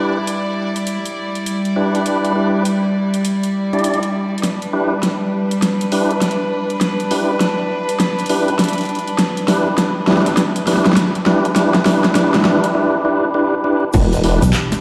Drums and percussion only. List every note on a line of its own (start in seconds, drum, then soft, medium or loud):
0.27 closed hi-hat medium
0.76 closed hi-hat medium
0.87 closed hi-hat medium
1.06 closed hi-hat medium
1.35 closed hi-hat soft
1.46 closed hi-hat medium
1.65 closed hi-hat soft
1.95 closed hi-hat soft
2.06 closed hi-hat medium
2.25 closed hi-hat soft
2.65 closed hi-hat medium
3.14 closed hi-hat soft
3.25 closed hi-hat medium
3.43 closed hi-hat soft
3.73 closed hi-hat soft
3.79 closed hi-hat soft
3.84 closed hi-hat medium
3.94 closed hi-hat soft
4.03 closed hi-hat soft
4.38 closed hi-hat soft
4.43 snare soft
4.43 closed hi-hat medium
4.62 closed hi-hat soft
5.03 snare soft
5.03 closed hi-hat medium
5.51 closed hi-hat soft
5.62 snare medium
5.62 closed hi-hat medium
5.81 closed hi-hat soft
5.92 open hi-hat medium
6.11 closed hi-hat soft
6.22 snare medium
6.22 closed hi-hat medium
6.31 closed hi-hat soft
6.70 closed hi-hat soft
6.81 snare medium
6.81 closed hi-hat medium
7.00 closed hi-hat soft
7.11 open hi-hat medium
7.41 snare medium
7.41 closed hi-hat medium
7.89 closed hi-hat soft
8.00 snare medium
8.00 closed hi-hat medium
8.19 closed hi-hat soft
8.26 closed hi-hat soft
8.26 open hi-hat medium
8.48 closed hi-hat soft
8.59 snare medium
8.59 closed hi-hat medium
8.64 closed hi-hat medium
8.68 closed hi-hat soft
8.73 closed hi-hat soft
8.78 closed hi-hat soft
8.81 closed hi-hat soft
8.83 closed hi-hat soft
8.85 closed hi-hat soft
8.89 closed hi-hat soft
8.95 closed hi-hat soft
8.99 closed hi-hat soft
9.07 closed hi-hat soft
9.18 snare medium
9.18 closed hi-hat medium
9.37 closed hi-hat soft
9.48 snare medium
9.48 open hi-hat medium
9.78 snare medium
9.78 closed hi-hat medium
10.07 snare medium
10.12 snare medium
10.17 snare medium
10.22 snare soft
10.26 snare soft
10.26 closed hi-hat medium
10.29 snare soft
10.32 snare soft
10.34 snare soft
10.37 snare medium
10.37 closed hi-hat medium
10.56 closed hi-hat medium
10.67 snare soft
10.67 open hi-hat medium
10.73 snare soft
10.77 snare medium
10.86 snare medium
10.86 closed hi-hat soft
10.93 snare medium
10.96 snare medium
10.96 closed hi-hat medium
11.15 closed hi-hat soft
11.26 snare medium
11.45 closed hi-hat soft
11.56 snare medium
11.56 closed hi-hat medium
11.74 snare medium
11.74 closed hi-hat soft
11.86 snare medium
11.86 open hi-hat medium
12.04 snare medium
12.04 closed hi-hat soft
12.15 snare loud
12.15 closed hi-hat medium
12.34 snare medium
12.34 closed hi-hat soft
12.36 snare medium
12.40 snare soft
12.41 snare soft
12.43 snare soft
12.45 snare loud
12.64 closed hi-hat medium
13.93 kick loud
13.93 crash loud
13.93 shaker medium
14.13 closed hi-hat soft
14.13 shaker soft
14.24 open hi-hat medium
14.42 closed hi-hat medium
14.42 shaker medium
14.53 clap loud
14.53 shaker medium
14.72 snare soft
14.72 closed hi-hat medium
14.72 shaker soft